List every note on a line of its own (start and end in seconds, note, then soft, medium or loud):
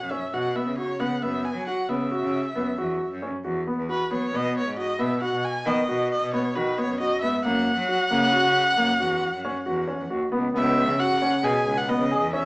0.00 0.18 F#2 medium
0.00 0.13 F#5 medium
0.11 0.23 C#4 medium
0.11 0.35 E5 medium
0.33 0.61 B2 medium
0.33 0.46 F#4 medium
0.33 0.57 F#5 medium
0.55 0.68 B3 medium
0.55 0.77 E5 medium
0.66 0.85 C#3 medium
0.78 0.90 F#4 medium
0.78 1.02 C#5 medium
0.99 1.09 C#3 medium
0.99 1.12 B3 medium
0.99 1.24 F#5 medium
1.22 1.50 F#2 medium
1.22 1.48 B3 medium
1.22 1.46 E5 medium
1.45 1.67 G#5 medium
1.55 1.74 F#3 medium
1.67 1.80 F#4 medium
1.67 1.90 F#5 medium
1.89 2.07 C#3 medium
1.89 2.01 B3 medium
1.89 3.22 E5 medium
2.11 2.36 F#4 medium
2.22 2.49 C#3 medium
2.55 2.64 F#2 medium
2.55 2.68 B3 medium
2.77 3.05 E2 medium
2.77 3.03 F#4 medium
3.11 3.29 F#2 medium
3.22 3.35 C#4 medium
3.44 3.72 E2 medium
3.44 3.57 F#4 medium
3.67 3.80 B3 medium
3.77 3.96 E2 medium
3.89 4.01 F#4 medium
3.89 4.10 B4 medium
4.11 4.20 F#3 medium
4.11 4.23 B3 medium
4.11 4.37 C#5 medium
4.32 4.60 B2 medium
4.32 4.58 B3 medium
4.32 4.56 D#5 loud
4.57 4.77 C#5 medium
4.66 4.85 G#2 medium
4.77 4.90 F#4 medium
4.77 5.02 D#5 medium
4.99 5.18 B2 medium
4.99 5.12 B3 medium
4.99 5.21 E5 medium
5.22 5.47 F#4 medium
5.22 5.46 F#5 medium
5.33 5.52 B2 medium
5.45 5.69 G#5 medium
5.66 5.75 D#3 loud
5.66 5.79 B3 medium
5.66 6.11 D#5 medium
5.88 6.16 B2 medium
5.88 6.14 F#4 medium
6.12 6.32 D#5 medium
6.22 6.40 B2 medium
6.33 6.46 B3 medium
6.33 6.57 C#5 medium
6.55 6.83 D#3 medium
6.55 6.68 F#4 medium
6.55 6.80 B4 medium
6.78 6.90 B3 medium
6.78 6.99 C#5 medium
6.89 7.07 F#2 medium
7.00 7.13 F#4 medium
7.00 7.21 D#5 loud
7.21 7.32 G#2 medium
7.21 7.35 B3 medium
7.21 7.42 E5 medium
7.44 7.72 F#2 medium
7.44 7.70 A#3 medium
7.44 10.07 F#5 loud
7.78 7.96 F#3 medium
7.89 8.01 F#4 medium
8.11 8.29 C#3 loud
8.11 8.23 A#3 medium
8.33 8.58 F#4 medium
8.44 8.72 C#3 medium
8.77 8.87 F#2 medium
8.77 8.90 A#3 medium
9.00 9.27 E2 medium
9.00 9.25 F#4 medium
9.33 9.51 F#2 medium
9.45 9.57 C#4 medium
9.66 9.94 E2 medium
9.66 9.79 F#4 medium
9.88 10.00 C#4 medium
10.00 10.09 E2 medium
10.10 10.31 D#2 medium
10.10 10.23 F#4 medium
10.32 10.53 C#2 medium
10.32 10.45 B3 medium
10.54 10.82 C#2 loud
10.54 10.80 B3 medium
10.54 11.01 E5 loud
10.89 10.98 C#3 medium
11.00 11.12 F#4 medium
11.00 11.46 F#5 loud
11.10 11.29 C#3 medium
11.22 11.34 C#4 medium
11.43 11.53 B2 loud
11.43 11.69 G#4 medium
11.43 11.79 G#5 loud
11.66 11.84 C#2 medium
11.78 11.90 F#5 medium
11.88 12.01 B3 medium
11.88 12.33 D#5 medium
11.99 12.17 C#3 medium
12.11 12.24 G#4 medium
12.21 12.39 E2 medium
12.33 12.45 C#4 medium
12.33 12.45 E5 medium